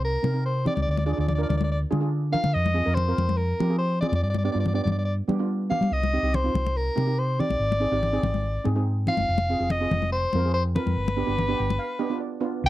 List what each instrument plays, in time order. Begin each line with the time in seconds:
Already playing: fingered electric bass C2
0.04 soprano saxophone A#4
0.23 fingered electric bass C3, steel pan C4 D#4 A#4, high conga
0.34 steel pan C4 D#4 A#4
0.45 soprano saxophone C5
0.65 steel pan C4 D#4 G4, soprano saxophone D5, low conga
0.75 fingered electric bass C#2, soprano saxophone D5, high conga
0.82 soprano saxophone D5
0.87 fingered electric bass D2, soprano saxophone D5
0.97 soprano saxophone D5, high conga
1.06 steel pan D4 F4 G#4, soprano saxophone D5
1.13 soprano saxophone D5
1.17 fingered electric bass D2, steel pan D4 F4 G#4, soprano saxophone D5
1.28 soprano saxophone D5, low conga
1.35 steel pan D4 F4 A#4, soprano saxophone D5
1.43 soprano saxophone D5
1.49 fingered electric bass D2, soprano saxophone D5, high conga, low conga
1.57 soprano saxophone D5, high conga
1.64 soprano saxophone D5
1.72 soprano saxophone D5
1.91 fingered electric bass D3, steel pan D4 F4 G#4, high conga
2.00 steel pan D4 F4 G#4
2.32 steel pan D4 F4 A#4, soprano saxophone F5, low conga
2.44 fingered electric bass D3, high conga
2.54 fingered electric bass F2, soprano saxophone D#5
2.66 high conga
2.74 steel pan C4 F4 G#4
2.85 fingered electric bass F2, steel pan C4 F4 A#4
2.95 soprano saxophone C5, low conga
3.08 steel pan C4 F4 A#4
3.18 fingered electric bass F2, high conga, low conga
3.29 high conga
3.37 soprano saxophone A#4
3.60 fingered electric bass F3, steel pan C4 F4 G4, high conga
3.69 steel pan C4 F4 G#4
3.78 soprano saxophone C5
4.01 steel pan C4 F4 G#4, soprano saxophone D5, low conga
4.08 fingered electric bass F2, soprano saxophone D5
4.13 soprano saxophone D5, high conga
4.22 fingered electric bass G2, soprano saxophone D5
4.30 soprano saxophone D5
4.34 soprano saxophone D5, high conga
4.44 steel pan B3 D4 G4, soprano saxophone D5
4.52 fingered electric bass G2, steel pan B3 D4 F4, soprano saxophone D5
4.60 soprano saxophone D5
4.66 soprano saxophone D5, low conga
4.74 steel pan B3 D4 G4, soprano saxophone D5
4.83 fingered electric bass G2, soprano saxophone D5
4.87 high conga, low conga
4.92 soprano saxophone D5
4.98 soprano saxophone D5
5.05 soprano saxophone D5
5.28 fingered electric bass G3, steel pan B3 D4 G4, low conga
5.39 steel pan B3 D4 F4
5.70 steel pan B3 D4 G4, soprano saxophone F5, low conga
5.81 fingered electric bass G3, high conga
5.91 fingered electric bass C2, soprano saxophone D#5
6.03 high conga
6.13 steel pan C4 D#4 G4
6.23 fingered electric bass C2, steel pan C4 D#4 G4
6.34 soprano saxophone C5, low conga
6.44 steel pan C4 D#4 F4
6.54 fingered electric bass C2, high conga, low conga
6.67 high conga
6.77 soprano saxophone A#4
6.96 fingered electric bass C3, steel pan C4 D#4 G4, high conga
7.07 steel pan C4 D#4 G4
7.19 soprano saxophone C5
7.39 steel pan C4 D#4 G4, soprano saxophone D5, low conga
7.50 fingered electric bass A#1, high conga
7.59 fingered electric bass G#1
7.72 high conga
7.80 steel pan C4 D#4 G#4
7.91 fingered electric bass G#1, steel pan C4 D#4 G4
8.03 low conga
8.13 steel pan C4 D#4 G#4
8.23 fingered electric bass G#1, high conga, low conga
8.34 high conga
8.64 fingered electric bass G#2, steel pan C4 D#4 G#4, high conga
8.75 steel pan C4 D#4 G#4
9.07 steel pan C4 D#4 F4, soprano saxophone F5, low conga
9.17 fingered electric bass F#1, high conga
9.29 fingered electric bass F1
9.38 high conga
9.50 steel pan C4 F4 G#4
9.59 fingered electric bass F1, steel pan C4 F4 G#4
9.70 soprano saxophone D#5, low conga
9.80 steel pan C4 F4 G#4
9.91 fingered electric bass F1, high conga, low conga
10.02 high conga
10.12 soprano saxophone C5
10.33 fingered electric bass F2, steel pan C4 F4 A#4, high conga
10.44 steel pan C4 F4 G#4
10.54 soprano saxophone C5
10.75 steel pan C4 F4 A#4, soprano saxophone B4, low conga
10.86 fingered electric bass F2, high conga
10.96 fingered electric bass G1
11.08 high conga
11.17 steel pan B3 D4 G4
11.26 fingered electric bass G1, steel pan B3 D4 G4
11.38 low conga
11.48 steel pan B3 D4 G4
11.58 fingered electric bass G1, steel pan G5
11.70 high conga
11.79 steel pan F5
11.99 steel pan B3 D4 G4 D#5
12.10 steel pan B3 D4 F4
12.20 steel pan D5
12.40 steel pan B3 D4 F4 B4
12.64 fingered electric bass C2, soprano saxophone G5